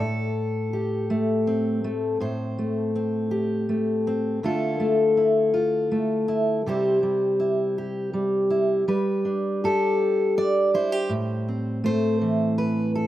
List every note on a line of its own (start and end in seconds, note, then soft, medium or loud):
0.00 2.19 A2 medium
0.00 2.20 A4 medium
0.73 2.16 G4 soft
1.10 1.83 A3 medium
1.47 2.94 C4 soft
1.84 2.16 A3 medium
2.20 4.43 A2 medium
2.20 4.39 C5 medium
2.58 3.68 A3 medium
2.96 4.06 C4 soft
3.31 4.38 G4 medium
3.69 4.39 A3 medium
4.07 4.44 C4 medium
4.43 6.66 D3 medium
4.43 4.79 A3 medium
4.43 5.17 E4 medium
4.43 5.52 F4 medium
4.43 6.67 A4 medium
4.80 5.90 A3 medium
5.17 6.27 E4 soft
5.54 6.61 F4 medium
5.91 6.61 A3 medium
6.28 6.61 E4 medium
6.66 8.84 C3 medium
6.66 7.02 G3 medium
6.66 7.38 E4 medium
6.66 7.78 G4 medium
6.66 8.85 C5 medium
7.03 8.13 G3 medium
7.40 8.49 E4 medium
7.78 9.64 G4 medium
8.13 8.87 G3 medium
8.50 8.83 E4 medium
8.88 11.83 G3 medium
8.88 9.64 B4 medium
9.25 10.36 D4 medium
9.64 10.74 G4 soft
9.64 10.37 A4 medium
10.37 11.07 D4 medium
10.37 10.74 D5 medium
10.74 10.92 E4 medium
10.74 11.84 C5 medium
10.92 11.11 G4 soft
11.09 13.07 A2 medium
11.49 13.07 C4 soft
11.84 13.07 A3 medium
11.84 12.58 C5 medium
12.21 13.07 E3 medium
12.58 12.95 B4 medium
12.95 13.07 A4 medium